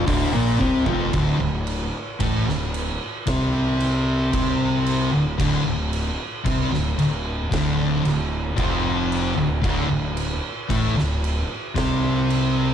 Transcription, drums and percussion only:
0.07 kick, open hi-hat
0.61 kick
0.86 floor tom
1.13 kick, crash
1.67 crash
2.20 kick, crash
2.49 snare
2.74 crash
3.27 kick, snare, crash
3.80 crash
4.33 kick, crash
4.86 crash
5.40 kick, crash
5.93 crash
6.46 kick, crash
6.74 snare
6.99 crash
7.52 kick, snare, crash
8.05 crash
8.58 kick, crash
9.12 crash
9.64 kick, crash
10.17 crash
10.70 kick, crash
10.98 snare
11.24 crash
11.76 kick, snare, crash
12.30 crash

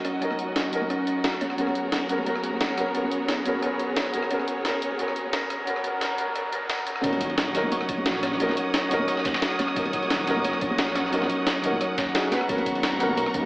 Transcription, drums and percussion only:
0.05 cross-stick, closed hi-hat
0.22 closed hi-hat
0.31 cross-stick, high conga
0.39 closed hi-hat
0.56 snare, closed hi-hat
0.73 closed hi-hat
0.81 high conga
0.90 cross-stick, closed hi-hat
1.07 closed hi-hat
1.24 snare, closed hi-hat
1.33 cross-stick
1.41 closed hi-hat, high conga
1.50 cross-stick
1.58 closed hi-hat
1.67 cross-stick, high conga
1.75 closed hi-hat
1.92 snare, closed hi-hat
2.09 closed hi-hat
2.18 high conga
2.26 closed hi-hat, high conga
2.35 cross-stick
2.44 closed hi-hat
2.53 high conga
2.61 snare, closed hi-hat
2.78 cross-stick, closed hi-hat
2.95 closed hi-hat
3.04 high conga
3.11 closed hi-hat
3.29 snare, closed hi-hat
3.46 closed hi-hat
3.54 high conga
3.62 cross-stick, closed hi-hat
3.79 closed hi-hat
3.96 snare, closed hi-hat
4.06 cross-stick
4.14 closed hi-hat, high conga
4.23 cross-stick
4.31 closed hi-hat
4.39 cross-stick, high conga
4.48 closed hi-hat
4.65 snare, closed hi-hat
4.82 closed hi-hat
4.91 high conga
4.99 closed hi-hat, high conga
5.08 cross-stick
5.16 closed hi-hat
5.26 high conga
5.33 snare, closed hi-hat
5.50 cross-stick, closed hi-hat
5.67 closed hi-hat
5.76 cross-stick, high conga
5.84 closed hi-hat
6.01 snare, closed hi-hat
6.18 closed hi-hat
6.26 high conga
6.35 cross-stick, closed hi-hat
6.53 closed hi-hat
6.70 snare, closed hi-hat
6.79 cross-stick
6.87 closed hi-hat, high conga
6.96 cross-stick
7.04 kick, closed hi-hat, ride
7.11 ride, high conga
7.21 kick, closed hi-hat, ride
7.30 ride
7.38 snare, closed hi-hat, ride
7.55 snare, closed hi-hat, ride
7.63 high conga
7.71 closed hi-hat, ride, high conga
7.81 cross-stick
7.89 kick, closed hi-hat, ride
7.98 high conga
8.06 snare, closed hi-hat, ride
8.15 snare
8.23 cross-stick, snare, closed hi-hat, ride
8.32 snare
8.40 closed hi-hat, ride
8.49 snare, high conga
8.57 closed hi-hat, ride
8.74 snare, closed hi-hat, ride
8.91 snare, closed hi-hat, ride
8.99 high conga
9.08 cross-stick, closed hi-hat, ride
9.17 snare
9.25 kick, snare, closed hi-hat, ride
9.34 snare, ride
9.42 snare, closed hi-hat, ride
9.59 snare, closed hi-hat, ride, high conga
9.68 cross-stick
9.76 kick, closed hi-hat, ride
9.85 ride, high conga
9.93 kick, closed hi-hat, ride
10.03 ride
10.10 snare, closed hi-hat, ride
10.27 snare, closed hi-hat, ride
10.36 high conga
10.44 closed hi-hat, ride, high conga
10.53 cross-stick
10.61 kick, closed hi-hat, ride
10.71 high conga
10.78 snare, closed hi-hat, ride
10.88 snare
10.95 cross-stick, snare, closed hi-hat, ride
11.05 snare
11.13 closed hi-hat, ride
11.22 snare, high conga
11.30 closed hi-hat, ride
11.47 snare, closed hi-hat, ride
11.64 closed hi-hat, ride
11.72 high conga
11.81 cross-stick, closed hi-hat, ride
11.98 kick, snare, closed hi-hat, ride
12.07 snare
12.15 snare, closed hi-hat, ride
12.31 snare, closed hi-hat, ride, high conga
12.41 cross-stick
12.49 kick, closed hi-hat, ride
12.58 ride, high conga
12.66 kick, closed hi-hat, ride
12.75 ride
12.83 snare, closed hi-hat, ride
13.00 snare, closed hi-hat, ride
13.09 high conga
13.17 closed hi-hat, ride, high conga
13.26 cross-stick
13.34 kick, closed hi-hat, ride

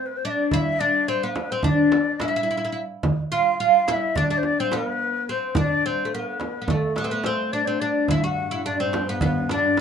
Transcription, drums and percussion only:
0.51 frame drum, darbuka dum
1.08 darbuka ka
1.36 darbuka tek, frame drum
1.63 frame drum, darbuka dum
1.92 darbuka tek, frame drum
2.20 darbuka tek, frame drum
2.35 darbuka ka
3.03 frame drum, darbuka dum
3.61 darbuka ka
3.88 darbuka tek, frame drum
4.16 frame drum, darbuka dum
4.43 frame drum
4.72 darbuka tek, frame drum
4.87 darbuka ka
5.55 frame drum, darbuka dum
6.40 darbuka tek, frame drum
6.68 frame drum, darbuka dum
6.96 darbuka tek, frame drum
7.24 darbuka tek, frame drum
7.52 darbuka ka
8.08 darbuka dum, frame drum
8.93 darbuka tek, frame drum
9.21 darbuka dum, frame drum
9.49 darbuka tek, frame drum
9.77 darbuka tek, frame drum

